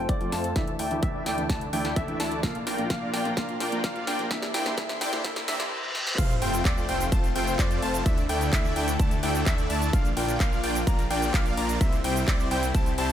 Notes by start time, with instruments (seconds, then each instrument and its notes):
Already playing: analog synth pad F4 A4 C5 A5, riser
0.09 detuned saw bass F1, supersaw synth A3 C4 F4 C5 D5, grand piano D5, kick, closed hi-hat
0.20 felt piano F3 A3 C4 F4, closed hi-hat
0.32 detuned saw bass F2, supersaw synth A3 C4 F4 C5 A5, grand piano A5, snare, open hi-hat
0.44 closed hi-hat
0.55 detuned saw bass D2, felt piano E3 A3 D4 E4, supersaw synth A3 D4 E4 D5 E5, analog synth pad E4 D5, grand piano E5, kick, snare, closed hi-hat
0.68 closed hi-hat
0.79 detuned saw bass D2, supersaw synth A3 D4 E4 D5 G5, grand piano G5, open hi-hat
0.90 felt piano E3 A3 D4 E4, closed hi-hat
1.03 detuned saw bass D2, supersaw synth D4 D5, grand piano E5, kick, closed hi-hat
1.26 detuned saw bass D2, supersaw synth A3 D4 E4 D5 G5, grand piano G5, snare, open hi-hat
1.37 felt piano E3 A3 D4 E4, closed hi-hat
1.49 detuned saw bass D2, supersaw synth A3 D4 E4 D5 A5, grand piano A5, kick, snare, closed hi-hat
1.61 closed hi-hat
1.72 detuned saw bass D2, felt piano E3 A3 D4 E4, supersaw synth A3 D4 E4 D5 G5, grand piano G5, open hi-hat
1.85 snare, closed hi-hat
1.96 detuned saw bass D2, supersaw synth A3 D4 E4 D5 E5, grand piano E5, kick, closed hi-hat
2.08 felt piano E3 A3 D4 E4, closed hi-hat
2.20 detuned saw bass D2, supersaw synth A3 D4 E4 D5 A5, grand piano A5, snare, open hi-hat
2.32 closed hi-hat
2.43 detuned saw bass A#1, felt piano A#2 F3 A#3 D4 F4, supersaw synth A#3 D4 F4 D5 F5, analog synth pad F4 A#4 A#5, grand piano F5, kick, snare, closed hi-hat
2.55 closed hi-hat
2.67 detuned saw bass A#1, supersaw synth A#3 D4 F4 D5 G5, grand piano G5, snare, open hi-hat
2.78 felt piano A#2 F3 A#3 D4 F4, closed hi-hat
2.90 detuned saw bass A#1, supersaw synth A#3 D4 F4 D5 F5, grand piano F5, kick, snare, closed hi-hat
3.14 detuned saw bass A#1, supersaw synth A#3 D4 F4 D5 G5, grand piano G5, snare, open hi-hat
3.25 felt piano A#2 F3 A#3 D4 F4, closed hi-hat
3.36 detuned saw bass A#1, felt piano A#2 F3 A#3 D4 F4, supersaw synth A#3 D4 F4 D5, grand piano F5, kick, snare, closed hi-hat
3.49 closed hi-hat
3.60 detuned saw bass A#1, supersaw synth A#3 D4 F4 D5 G5, grand piano G5, snare, open hi-hat
3.72 felt piano A#2 F3 A#3 D4 F4, closed hi-hat
3.84 detuned saw bass A#1, supersaw synth A#3 D4 F4 D5 F5, grand piano F5, kick, snare, closed hi-hat
3.96 closed hi-hat
4.07 detuned saw bass A#1, supersaw synth A#3 D4 F4 D5 G5, grand piano G5, snare, open hi-hat
4.18 felt piano A#2 F3 A#3 D4 F4, closed hi-hat
4.30 detuned saw bass C2, felt piano A#2 E3 A#3 D4 E4, supersaw synth A#3 D4 E4 D5 E5, analog synth pad G4 C5 E5 C6, grand piano E5, kick, snare, closed hi-hat
4.42 snare, closed hi-hat
4.54 detuned saw bass C2, supersaw synth A#3 D4 E4 D5 G5, grand piano G5, snare, open hi-hat
4.65 felt piano A#2 E3 A#3 D4 E4, snare, closed hi-hat
4.77 detuned saw bass C2, felt piano A#2 E3 A#3 D4 E4, supersaw synth A#3 D4 E4 D5 E5, grand piano E5, kick, snare, closed hi-hat
4.89 snare
5.01 detuned saw bass C2, supersaw synth A#3 D4 E4 D5 G5, grand piano G5, snare, open hi-hat
5.12 felt piano A#2 E3 A#3 D4 E4, snare, closed hi-hat
5.24 detuned saw bass C2, felt piano A#2 E3 A#3 D4 E4, supersaw synth A#3 D4 E4 D5 E5, grand piano E5, kick, snare, closed hi-hat, reverse cymbal
5.36 snare, closed hi-hat
5.47 detuned saw bass C2, felt piano A#2 E3 A#3 D4 E4, supersaw synth A#3 D4 E4 D5 E5, grand piano E5, snare, open hi-hat
5.60 snare, closed hi-hat
5.95 snare
6.07 snare
6.18 detuned saw bass F1, supersaw synth A3 C4 F4 C5 F5, analog synth pad A3 C4 F4, grand piano F5, kick, closed hi-hat, crash, sub drop, shaker
6.30 closed hi-hat, shaker
6.42 detuned saw bass F1, supersaw synth A3 C4 F4 C5 G5, grand piano G5, open hi-hat
6.54 closed hi-hat, shaker
6.65 detuned saw bass F1, supersaw synth A3 D5, grand piano D5, kick, clap, closed hi-hat, shaker
6.78 shaker
6.89 detuned saw bass F1, supersaw synth A3 C4 F4 C5 G5, grand piano G5, open hi-hat
7.01 closed hi-hat, shaker
7.12 detuned saw bass F1, supersaw synth A3 C4 F4 C5 A5, grand piano A5, kick, closed hi-hat, shaker
7.24 closed hi-hat, shaker
7.36 detuned saw bass F1, supersaw synth A3 C4 F4 C5 G5, grand piano G5, open hi-hat
7.47 closed hi-hat, shaker
7.59 detuned saw bass F2, supersaw synth A3 C4 F4 C5 D5, grand piano D5, kick, clap, closed hi-hat, shaker
7.71 closed hi-hat, shaker
7.82 detuned saw bass F1, supersaw synth A3 C4 F4 C5 A5, grand piano A5, open hi-hat
7.94 closed hi-hat, shaker
8.06 detuned saw bass D2, analog synth pad D3 D4 E4 A4, supersaw synth A3 D4 E4 D5 E5, grand piano E5, kick, closed hi-hat, shaker
8.18 closed hi-hat, shaker
8.29 detuned saw bass D2, supersaw synth A3 D4 E4 D5 G5, grand piano G5, open hi-hat
8.41 closed hi-hat, shaker
8.53 detuned saw bass D2, supersaw synth A3 D4 E4 E5, grand piano E5, kick, clap, closed hi-hat, shaker
8.65 shaker
8.76 detuned saw bass D2, supersaw synth A3 D4 E4 D5 G5, grand piano G5, open hi-hat
8.88 closed hi-hat, shaker
9.00 detuned saw bass D2, supersaw synth A3 D4 E4 D5 A5, grand piano A5, kick, closed hi-hat, shaker
9.11 closed hi-hat, shaker
9.23 detuned saw bass D2, supersaw synth A3 D4 E4 D5 G5, grand piano G5, open hi-hat
9.35 closed hi-hat, shaker
9.46 detuned saw bass D2, supersaw synth A3 D4 E4 D5 E5, grand piano E5, kick, clap, closed hi-hat, shaker
9.58 closed hi-hat, shaker
9.70 detuned saw bass D2, supersaw synth A3 D4 E4 D5 A5, grand piano A5, open hi-hat
9.82 closed hi-hat, shaker
9.93 detuned saw bass A#1, supersaw synth A#3 D4 F4 D5 F5, analog synth pad A#3 F4, grand piano F5, kick, closed hi-hat, shaker
10.05 closed hi-hat, shaker
10.17 detuned saw bass A#1, supersaw synth A#3 D4 F4 D5 G5, grand piano G5, open hi-hat
10.28 closed hi-hat, shaker
10.40 detuned saw bass A#1, supersaw synth A#3 D4 F4 D5 F5, grand piano F5, kick, clap, closed hi-hat, shaker
10.53 shaker
10.64 detuned saw bass A#1, supersaw synth A#3 D4 F4 D5 G5, grand piano G5, open hi-hat
10.75 closed hi-hat, shaker
10.87 detuned saw bass A#1, supersaw synth A#3 D4 F4 D5 A#5, grand piano A#5, kick, closed hi-hat, shaker
10.99 closed hi-hat, shaker
11.10 detuned saw bass A#1, supersaw synth A#3 D4 F4 D5 G5, grand piano G5, open hi-hat
11.22 closed hi-hat, shaker
11.34 detuned saw bass A#1, supersaw synth A#3, grand piano F5, kick, clap, closed hi-hat, shaker
11.46 closed hi-hat, shaker
11.57 detuned saw bass A#1, supersaw synth A#3 D4 F4 D5 A#5, grand piano A#5, open hi-hat
11.69 closed hi-hat, shaker
11.81 detuned saw bass C2, analog synth pad C3 C4 E4 G4, supersaw synth G3 C4 E4 C5 E5, grand piano E5, kick, closed hi-hat, shaker
11.93 closed hi-hat, shaker
12.04 detuned saw bass C2, supersaw synth G3 C4 E4 C5 G5, grand piano G5, open hi-hat
12.16 closed hi-hat, shaker
12.28 detuned saw bass C2, supersaw synth G3 C4 E4 C5 D5, grand piano D5, kick, clap, closed hi-hat, shaker
12.40 shaker
12.51 detuned saw bass C2, supersaw synth G3 C4 E4 C5 G5, grand piano G5, open hi-hat
12.63 closed hi-hat, shaker
12.74 detuned saw bass C2, supersaw synth G3 C4 E4 C5 A5, grand piano A5, kick, closed hi-hat, shaker
12.86 closed hi-hat, shaker
12.98 detuned saw bass C2, supersaw synth G3 C4 E4 C5 A5, grand piano A5, open hi-hat